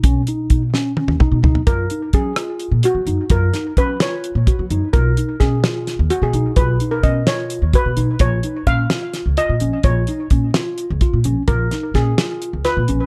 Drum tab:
HH |x-x-x---------|x-x-x-x-x-x-x-|x-x-x-x-x-x-x-|x-x-x-x-x-x-x-|
SD |------o-------|------r-------|--o---o-------|----o-o-o-----|
T1 |--------oo----|--------------|--------------|--------------|
T2 |----------o---|--------------|--------------|--------------|
FT |------------oo|--------------|--------------|--------------|
BD |o---o-----o---|o---o---------|o---o-----o---|o---o---------|

HH |x-x-x-x-x-x-x-|x-x-x-x-x-x-x-|x-x-x-x-x-x-x-|x-x-x-x-x-x-x-|
SD |------o-------|------o-o-----|------o-------|--o-o-o---o---|
T1 |--------------|--------------|--------------|--------------|
T2 |--------------|--------------|--------------|--------------|
FT |--------------|--------------|--------------|--------------|
BD |o---o-----o---|o---o---------|o---o-----o---|o---o---------|